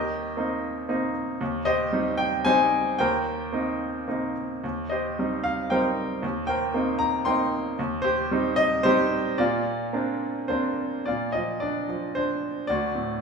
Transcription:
0.00 1.37 D#2 soft
0.00 1.11 G4 medium
0.00 1.11 A#4 medium
0.00 1.11 D#5 medium
0.37 0.87 A#3 soft
0.37 0.88 C4 soft
0.37 0.88 D#4 soft
0.89 1.39 A#3 soft
0.89 1.39 C4 soft
0.89 1.39 D#4 soft
1.41 2.96 D#2 medium
1.65 2.42 G4 medium
1.65 2.42 C5 medium
1.65 2.20 D#5 medium
1.92 2.44 G3 soft
1.92 2.45 C4 soft
1.92 2.45 D#4 soft
2.17 2.46 G5 medium
2.45 2.98 G3 soft
2.45 2.98 C4 soft
2.45 2.98 D#4 medium
2.45 2.96 C5 medium
2.45 3.01 G#5 loud
2.99 4.60 D#2 medium
2.99 4.33 A#4 medium
2.99 4.32 C5 medium
2.99 4.32 G5 medium
3.53 4.06 A#3 soft
3.53 4.07 C4 soft
3.53 4.07 D#4 soft
4.08 4.62 A#3 soft
4.08 4.62 C4 soft
4.08 4.62 D#4 soft
4.64 6.20 D#2 soft
4.90 5.69 G4 soft
4.90 5.68 C5 soft
4.90 5.47 D#5 medium
5.19 5.70 G3 soft
5.19 5.70 C4 soft
5.19 5.71 D#4 soft
5.44 5.69 F5 medium
5.70 6.22 G3 soft
5.70 6.22 C4 soft
5.70 6.22 D#4 soft
5.70 6.20 A#4 medium
5.70 6.19 C5 medium
5.70 6.19 G5 medium
6.23 7.74 D#2 medium
6.47 7.23 A#4 soft
6.47 7.23 C5 soft
6.47 7.01 G5 medium
6.74 7.25 A#3 soft
6.74 7.25 C4 soft
6.74 7.26 D#4 soft
6.99 7.27 A#5 medium
7.25 7.77 A#3 soft
7.25 7.77 C4 soft
7.25 7.78 D#4 soft
7.25 7.75 G5 medium
7.25 7.74 C6 medium
7.79 9.35 D#2 medium
8.02 8.81 G4 medium
8.02 8.53 C5 medium
8.31 8.83 G3 soft
8.31 8.84 C4 soft
8.31 8.84 D#4 soft
8.56 8.85 D#5 medium
8.83 9.37 G3 medium
8.83 9.37 C4 soft
8.83 9.38 D#4 medium
8.83 9.35 G4 medium
8.83 9.34 C5 medium
9.38 11.02 A#2 medium
9.38 10.46 F4 medium
9.38 10.45 D5 medium
9.93 10.48 A#3 soft
9.93 10.48 C4 soft
9.93 10.48 D4 soft
10.48 11.04 A#3 soft
10.48 11.05 C4 soft
10.48 11.05 D4 soft
10.48 11.07 C5 medium
11.06 12.66 A#2 soft
11.06 11.86 F4 soft
11.06 11.34 D5 medium
11.32 11.87 F3 soft
11.32 11.62 D#5 medium
11.60 12.15 D4 soft
11.60 12.17 D5 medium
11.89 12.67 F3 soft
12.15 12.68 D4 soft
12.15 12.70 C5 medium
12.67 13.21 D2 medium
12.67 13.21 F#4 medium
12.67 13.21 D5 medium
12.95 13.21 A2 soft

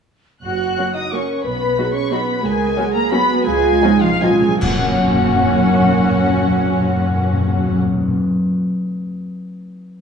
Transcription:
0.44 0.72 F#1 soft
0.44 0.92 F#4 medium
0.44 0.92 F#5 medium
0.44 0.92 F#6 medium
0.78 0.86 F#3 soft
0.78 0.86 A#3 soft
0.78 0.86 C#4 soft
0.78 1.10 F#4 soft
0.78 0.86 F#4 soft
0.94 1.02 D#4 soft
0.94 1.12 D#5 soft
0.94 1.13 D#6 medium
1.12 1.20 F#3 soft
1.12 1.20 A#3 soft
1.12 1.44 C#4 soft
1.12 1.21 C#4 soft
1.12 1.21 F#4 soft
1.12 1.45 A#4 soft
1.12 1.44 C#5 medium
1.12 1.45 C#6 medium
1.44 1.72 B1 medium
1.44 1.95 B3 medium
1.44 1.77 B4 medium
1.44 1.95 B4 medium
1.44 1.94 B5 medium
1.77 1.85 F#3 soft
1.77 1.86 B3 soft
1.77 1.86 D#4 soft
1.77 1.86 F#4 soft
1.77 2.12 G#4 medium
1.94 2.11 C#4 medium
1.94 2.11 C#5 medium
1.94 2.11 C#6 medium
2.11 2.19 F#3 medium
2.11 2.44 B3 medium
2.11 2.19 B3 soft
2.11 2.19 D#4 soft
2.11 2.19 F#4 soft
2.11 2.45 F#4 medium
2.11 2.44 B4 medium
2.11 2.44 B5 medium
2.43 2.71 C#2 medium
2.43 2.94 G#3 medium
2.43 2.93 G#4 medium
2.43 2.78 A#4 medium
2.43 2.94 G#5 medium
2.77 2.85 F#3 soft
2.77 2.86 B3 medium
2.77 2.85 C#4 medium
2.77 2.85 F#4 medium
2.77 3.13 G#4 medium
2.94 3.12 A#3 medium
2.94 3.12 A#4 medium
2.94 3.12 A#5 medium
3.11 3.20 F#3 medium
3.11 3.46 B3 medium
3.11 3.20 B3 medium
3.11 3.19 C#4 medium
3.11 3.19 F#4 medium
3.11 3.47 F#4 medium
3.11 3.46 B4 medium
3.11 3.46 B5 medium
3.45 3.76 C#2 medium
3.45 3.53 C#3 soft
3.45 4.01 G#3 medium
3.45 3.83 F4 medium
3.45 4.01 G#4 loud
3.45 4.01 G#5 medium
3.54 3.61 C#3 soft
3.62 3.70 C#3 soft
3.71 3.78 C#3 soft
3.79 3.87 C#3 soft
3.79 3.91 F3 medium
3.79 3.91 B3 medium
3.79 3.90 C#4 medium
3.79 3.90 D#4 medium
3.84 3.96 C#3 medium
3.84 4.23 D#4 medium
3.97 4.04 C#3 soft
4.01 4.12 C#3 medium
4.01 4.21 F3 medium
4.01 4.21 F4 medium
4.01 4.22 F5 loud
4.13 4.21 C#3 medium
4.20 4.30 C#3 medium
4.20 4.30 F3 medium
4.20 4.61 G#3 medium
4.20 4.30 B3 medium
4.20 4.30 C#4 medium
4.20 4.30 D#4 medium
4.20 4.42 F4 medium
4.20 4.60 G#4 medium
4.20 4.62 G#5 medium
4.31 4.39 C#3 medium
4.40 4.47 C#3 medium
4.49 4.57 C#3 medium
4.60 7.76 F#2 medium
4.60 4.69 F#2 medium
4.60 7.76 F#3 medium
4.60 7.76 A#3 medium
4.60 7.77 A#3 medium
4.60 7.76 C#4 medium
4.60 7.77 C#4 medium
4.60 7.77 F#4 medium
4.60 7.75 F#5 medium
4.60 7.77 F#5 medium
4.60 concert bass drum medium
4.60 crash medium
4.70 4.77 F#2 medium
4.77 4.84 F#2 medium
4.84 4.92 F#2 medium
4.92 4.99 F#2 medium
4.99 5.06 F#2 medium
5.06 5.14 F#2 medium
5.14 5.21 F#2 medium
5.21 5.28 F#2 medium
5.28 5.35 F#2 medium
5.35 5.43 F#2 medium
5.44 5.51 F#2 medium
5.51 5.59 F#2 medium
5.59 5.66 F#2 medium
5.67 5.74 F#2 medium
5.74 5.81 F#2 medium
5.81 5.89 F#2 medium
5.89 5.96 F#2 medium
5.96 6.03 F#2 medium
6.03 6.11 F#2 medium
6.11 6.19 F#2 medium
6.19 6.26 F#2 medium
6.27 6.34 F#2 medium
6.34 6.42 F#2 medium
6.42 6.50 F#2 medium
6.50 6.57 F#2 medium
6.57 6.65 F#2 medium
6.65 6.72 F#2 medium
6.72 6.80 F#2 medium
6.80 6.87 F#2 medium
6.87 6.94 F#2 medium
6.94 7.01 F#2 medium
7.01 7.09 F#2 medium
7.10 7.17 F#2 medium
7.17 7.25 F#2 medium
7.25 7.33 F#2 medium
7.33 7.40 F#2 medium
7.40 7.48 F#2 medium
7.48 7.56 F#2 medium
7.56 7.64 F#2 medium
7.64 7.71 F#2 medium
7.71 7.79 F#2 medium
7.79 7.86 F#2 medium
7.86 7.93 F#2 medium
7.93 8.01 F#2 medium
8.01 8.08 F#2 medium
8.08 8.16 F#2 medium
8.16 8.24 F#2 medium

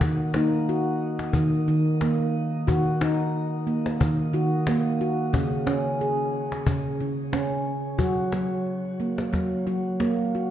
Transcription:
0.01 0.32 D#3 medium
0.01 cajon bass medium
0.34 0.69 A#3 medium
0.34 1.24 D#4 medium
0.34 cajon slap medium
0.69 1.35 F#4 medium
1.19 cajon slap soft
1.33 1.51 D#3 medium
1.33 cajon bass soft
1.68 2.56 D#3 medium
2.01 2.68 A#3 medium
2.01 cajon slap soft
2.20 cajon slap soft
2.67 2.97 D#3 medium
2.67 3.34 F#4 medium
2.67 cajon bass soft
3.01 3.89 D#4 medium
3.01 cajon slap soft
3.67 4.34 A#3 medium
3.86 cajon slap soft
4.00 4.17 D#3 medium
4.00 cajon bass medium
4.33 5.22 D#3 medium
4.33 4.67 F#4 medium
4.67 5.01 A#3 medium
4.67 cajon slap medium
4.86 cajon slap soft
5.01 5.34 F#4 medium
5.33 5.63 C#3 medium
5.33 cajon bass medium
5.67 6.55 C#4 medium
5.67 cajon slap soft
6.01 6.67 G#4 medium
6.52 cajon slap soft
6.67 6.83 C#3 medium
6.67 cajon bass medium
7.00 7.89 C#3 medium
7.33 8.00 C#4 medium
7.33 cajon slap medium
7.51 cajon slap soft
7.98 8.29 F#3 medium
7.98 8.66 F#4 medium
7.98 cajon bass medium
8.32 9.22 F#3 medium
8.32 cajon slap soft
8.66 cajon slap soft
8.85 cajon slap soft
9.00 9.67 A#3 medium
9.00 cajon slap soft
9.18 cajon slap soft
9.33 9.49 F#3 medium
9.33 cajon bass soft
9.33 cajon slap soft
9.67 10.51 F#3 medium
9.67 10.00 F#4 medium
10.00 10.33 A#3 medium
10.00 cajon slap soft
10.35 10.51 F#4 medium

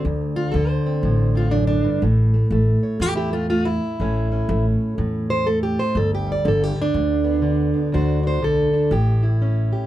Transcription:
0.00 0.54 D3 medium
0.05 0.43 D2 medium
0.05 1.53 D2 medium
0.36 0.53 F4 loud
0.52 0.78 D2 loud
0.52 2.03 D3 medium
0.52 0.68 A4 medium
0.68 1.35 C5 medium
0.86 1.34 C4 soft
1.03 1.81 A1 loud
1.03 2.01 A2 medium
1.35 1.51 C4 soft
1.35 1.53 F4 medium
1.51 1.84 F#2 medium
1.51 1.66 D4 medium
1.67 2.01 D4 loud
1.84 2.03 G2 medium
2.02 2.41 A1 loud
2.02 3.01 A2 medium
2.02 2.33 A3 soft
2.34 2.52 A3 soft
2.50 2.75 A1 loud
2.50 3.32 A3 medium
2.83 3.01 C#5 soft
3.00 3.78 E2 loud
3.00 4.00 A2 medium
3.00 3.14 E4 loud
3.00 3.16 G4 loud
3.16 3.33 E4 medium
3.16 3.33 G4 medium
3.33 3.49 A3 medium
3.33 3.49 F4 medium
3.50 3.67 A3 medium
3.50 3.67 F4 medium
3.65 4.65 E4 loud
4.00 4.38 A1 medium
4.00 4.97 A2 medium
4.00 4.31 C#4 medium
4.32 5.96 C#4 soft
4.49 4.73 A1 loud
4.49 5.45 A3 medium
4.98 5.76 E2 loud
4.98 5.97 A2 medium
5.30 5.47 C5 loud
5.46 5.94 A3 medium
5.46 5.63 A4 medium
5.63 5.80 G4 loud
5.79 5.96 C5 medium
5.95 6.35 G1 loud
5.95 6.93 D2 medium
5.95 6.13 A4 medium
6.15 6.30 G4 loud
6.27 6.79 G3 soft
6.32 6.47 D5 loud
6.45 6.69 G1 loud
6.45 6.74 D3 medium
6.45 6.64 A4 medium
6.64 6.80 G4 medium
6.76 7.41 D3 soft
6.82 7.79 D4 loud
6.94 7.72 D2 loud
6.94 7.91 D2 medium
7.24 7.73 B3 medium
7.42 8.41 D3 medium
7.74 7.94 B3 soft
7.92 8.92 D2 medium
7.92 8.42 D2 loud
7.92 8.22 D4 medium
7.92 8.43 F#4 medium
7.92 8.26 C5 medium
8.23 8.72 D4 soft
8.23 8.43 C5 loud
8.42 8.66 B1 loud
8.42 8.92 D3 medium
8.42 8.93 A4 loud
8.73 8.90 D4 medium
8.91 9.69 A1 loud
8.91 9.87 A2 medium
8.91 9.25 G4 medium
9.23 9.87 E4 medium
9.42 9.87 C#4 medium
9.73 9.87 G4 soft

